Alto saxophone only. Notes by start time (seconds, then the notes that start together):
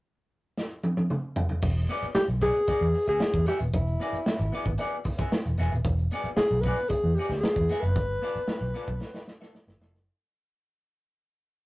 2.15 G4
2.42 G#4
3.09 G#4
3.48 G4
3.74 E4
6.37 G#4
6.61 B4
6.89 G#4
7.14 G4
7.40 G#4
7.80 B4